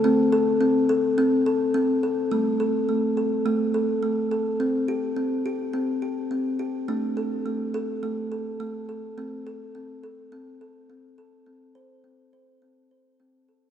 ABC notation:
X:1
M:4/4
L:1/8
Q:"Swing 16ths" 1/4=105
K:Am
V:1 name="Kalimba"
C A C A C A C A | A, A A, A A, A A, A | C G C G C G C G | A, A A, A A, A A, A |
C A C A C A C A | z c C c C c C A |]
V:2 name="Kalimba"
A,8 | G,8 | z8 | D8 |
A,8 | C8 |]